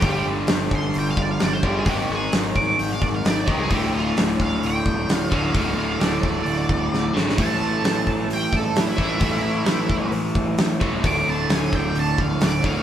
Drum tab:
HH |o---o---o---o---|o---o---o---o---|o---o---o---o---|o---o---o-------|
SD |----o-------o---|----o-------o---|----o-------o---|----o-------o-oo|
BD |o-----o---o---o-|o-----o---o---o-|o-----o---o---o-|o-----o---o-----|

HH |o---o---o---o---|o---o---o---o---|o---o---o---o---|
SD |----o-------o---|----o-------o---|----o-------o---|
BD |o-----o---o---o-|o-----o---o---o-|o-----o---o---o-|